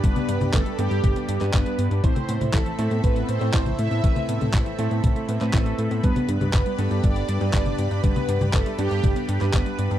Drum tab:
HH |xxxxxxxxxxxxxxxx|xxxxxxxxxxxxxxxx|xxxxxxxxxxxxxxxx|xxxxxxxxxxxxxxxx|
CP |----x------xx---|----x-------x---|----x------xx---|----x-------x---|
CG |-o-o----o-------|-o-o---------o--|-o-o----o-------|-o-o---------o--|
BD |o---o---o---o---|o---o---o---o---|o---o---o---o---|o---o---o---o---|

HH |xxxxxxxxxxxxxxxx|
CP |----x------xx---|
CG |-o-o----o-------|
BD |o---o---o---o---|